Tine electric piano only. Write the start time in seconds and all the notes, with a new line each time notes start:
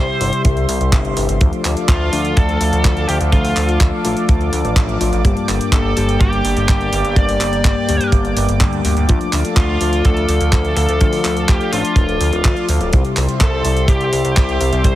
Already playing: C3 G3 C4 E4 G4
0.21 C3 G3 C4 E4 G4
1.41 F3 A3 D4 F4
2.13 F3 A3 D4 F4
3.33 F3 A3 D4 F4
4.05 F3 A3 D4 F4
5.01 F3 A3 D4 F4
5.25 G2 G3 A#3 D4 G4
5.97 G2 G3 A#3 D4 G4
7.17 G2 G3 A#3 D4 G4
7.88 G2 G3 A#3 D4 G4
9.09 F3 A3 D4 F4
9.81 F3 A3 D4 F4
11.01 F3 A3 D4 F4
11.73 F3 A3 D4 F4
12.93 C3 G3 C4 E4 G4
13.65 C3 G3 C4 E4 G4
14.85 C3 G3 C4 E4 G4